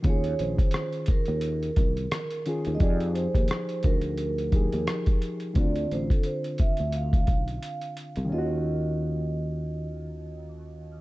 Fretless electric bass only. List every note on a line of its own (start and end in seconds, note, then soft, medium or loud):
0.05 0.33 D#2 medium
0.40 0.56 A#1 medium
1.28 1.69 D#2 medium
1.78 2.06 C2 medium
2.67 2.79 D#2 medium
2.81 3.26 F2 loud
3.35 3.47 D#2 medium
3.84 4.68 D2 medium
4.73 4.85 D#2 medium
5.56 5.85 D2 loud
5.92 6.07 A1 medium
6.80 7.28 D2 medium
7.28 7.57 B1 medium
8.17 8.29 C2 medium
8.32 11.01 D#2 medium